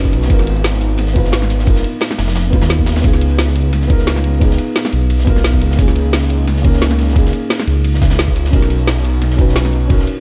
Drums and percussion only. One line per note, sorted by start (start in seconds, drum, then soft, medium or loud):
0.05 kick medium
0.13 closed hi-hat medium
0.13 ride medium
0.22 snare medium
0.22 cabasa medium
0.30 kick loud
0.30 closed hi-hat medium
0.30 ride medium
0.30 cabasa medium
0.39 snare soft
0.47 closed hi-hat loud
0.47 ride medium
0.47 cabasa soft
0.56 ride soft
0.64 snare loud
0.64 closed hi-hat medium
0.64 ride loud
0.64 ride medium
0.64 cabasa medium
0.74 snare soft
0.81 closed hi-hat loud
0.81 ride medium
0.97 snare soft
0.97 closed hi-hat medium
0.97 ride loud
0.97 ride medium
0.97 cabasa medium
1.07 snare soft
1.16 kick loud
1.16 closed hi-hat loud
1.16 ride medium
1.16 cabasa soft
1.25 snare soft
1.25 cabasa medium
1.32 snare loud
1.32 closed hi-hat medium
1.32 ride medium
1.32 cabasa medium
1.42 snare medium
1.49 snare soft
1.49 closed hi-hat loud
1.49 ride medium
1.59 snare soft
1.59 cabasa medium
1.67 kick loud
1.67 closed hi-hat medium
1.67 ride medium
1.67 cabasa medium
1.76 snare soft
1.84 closed hi-hat loud
1.84 ride medium
1.84 cabasa soft
2.01 snare loud
2.01 closed hi-hat medium
2.01 ride loud
2.01 ride medium
2.01 cabasa medium
2.10 snare medium
2.10 snare soft
2.10 snare medium
2.18 snare loud
2.18 closed hi-hat loud
2.18 ride medium
2.18 cabasa soft
2.28 snare loud
2.28 ride medium
2.36 snare loud
2.36 closed hi-hat medium
2.36 ride medium
2.36 cabasa medium
2.53 kick loud
2.53 closed hi-hat loud
2.53 ride medium
2.53 cabasa soft
2.62 snare loud
2.62 snare soft
2.62 ride medium
2.62 cabasa medium
2.70 snare loud
2.70 closed hi-hat medium
2.70 ride medium
2.70 cabasa soft
2.78 kick medium
2.78 ride medium
2.86 snare loud
2.86 closed hi-hat loud
2.86 ride medium
2.86 cabasa soft
2.96 snare loud
2.96 snare soft
2.96 ride medium
2.96 cabasa medium
3.04 kick loud
3.04 closed hi-hat medium
3.04 ride medium
3.04 cabasa medium
3.13 snare soft
3.21 closed hi-hat loud
3.21 ride medium
3.21 cabasa soft
3.31 ride soft
3.38 snare loud
3.38 closed hi-hat medium
3.38 ride medium
3.38 cabasa medium
3.47 snare soft
3.56 closed hi-hat loud
3.56 ride medium
3.73 snare soft
3.73 closed hi-hat medium
3.73 ride medium
3.73 cabasa medium
3.82 snare soft
3.90 kick loud
3.90 closed hi-hat loud
3.90 ride medium
3.90 cabasa soft
3.99 snare soft
3.99 cabasa medium
4.07 snare loud
4.07 closed hi-hat medium
4.07 ride medium
4.07 cabasa medium
4.16 snare medium
4.24 closed hi-hat loud
4.33 cabasa medium
4.41 kick loud
4.41 closed hi-hat medium
4.41 ride medium
4.41 cabasa soft
4.51 snare soft
4.58 closed hi-hat loud
4.58 ride medium
4.58 cabasa soft
4.75 snare loud
4.75 closed hi-hat medium
4.75 ride medium
4.75 cabasa soft
4.85 snare soft
4.85 snare medium
4.93 closed hi-hat loud
4.93 ride medium
5.10 closed hi-hat medium
5.10 ride medium
5.10 cabasa soft
5.19 snare soft
5.27 kick loud
5.27 closed hi-hat loud
5.27 ride medium
5.27 cabasa soft
5.36 snare soft
5.36 cabasa medium
5.44 snare loud
5.44 closed hi-hat medium
5.44 ride medium
5.44 cabasa soft
5.54 kick medium
5.61 closed hi-hat medium
5.61 ride medium
5.71 snare medium
5.71 cabasa medium
5.79 kick loud
5.79 closed hi-hat medium
5.79 ride medium
5.79 cabasa soft
5.88 snare soft
5.95 closed hi-hat medium
5.95 ride medium
5.95 cabasa soft
6.05 ride soft
6.13 snare loud
6.13 closed hi-hat medium
6.13 ride medium
6.13 ride loud
6.13 cabasa soft
6.22 snare soft
6.30 closed hi-hat medium
6.30 ride medium
6.47 snare soft
6.47 closed hi-hat medium
6.47 ride loud
6.47 ride medium
6.47 cabasa soft
6.57 snare soft
6.64 kick loud
6.64 closed hi-hat medium
6.64 ride medium
6.64 cabasa soft
6.74 snare soft
6.74 cabasa medium
6.82 snare loud
6.82 closed hi-hat medium
6.82 ride medium
6.82 cabasa soft
6.91 snare medium
6.99 snare soft
6.99 closed hi-hat medium
6.99 ride medium
7.08 snare soft
7.08 cabasa medium
7.16 kick loud
7.16 closed hi-hat medium
7.16 ride medium
7.16 cabasa soft
7.25 snare soft
7.33 closed hi-hat medium
7.33 ride medium
7.33 cabasa soft
7.50 snare loud
7.50 closed hi-hat medium
7.50 ride medium
7.50 cabasa medium
7.59 snare soft
7.59 snare medium
7.67 closed hi-hat medium
7.67 ride medium
7.84 closed hi-hat medium
7.84 ride medium
7.84 cabasa soft
7.94 snare soft
8.01 kick loud
8.01 snare loud
8.01 closed hi-hat medium
8.01 ride medium
8.01 cabasa soft
8.10 snare medium
8.10 snare soft
8.10 ride medium
8.10 cabasa medium
8.19 snare loud
8.19 closed hi-hat medium
8.19 ride medium
8.19 cabasa soft
8.28 kick medium
8.36 closed hi-hat medium
8.36 ride medium
8.45 snare medium
8.45 cabasa medium
8.53 kick loud
8.53 closed hi-hat medium
8.53 ride medium
8.53 cabasa medium
8.62 snare soft
8.70 closed hi-hat medium
8.70 ride medium
8.70 cabasa soft
8.79 ride soft
8.87 snare loud
8.87 closed hi-hat medium
8.87 ride medium
8.87 cabasa medium
8.97 snare soft
9.05 closed hi-hat medium
9.05 ride medium
9.21 snare soft
9.21 closed hi-hat medium
9.21 ride medium
9.21 cabasa medium
9.31 snare soft
9.39 kick loud
9.39 closed hi-hat medium
9.39 ride medium
9.39 cabasa soft
9.48 snare soft
9.48 cabasa medium
9.56 snare loud
9.56 closed hi-hat medium
9.56 ride medium
9.56 cabasa soft
9.65 snare medium
9.73 closed hi-hat medium
9.82 cabasa medium
9.90 kick loud
9.90 closed hi-hat medium
9.90 ride medium
9.90 cabasa medium
10.00 snare soft
10.07 closed hi-hat medium
10.07 ride medium
10.07 cabasa soft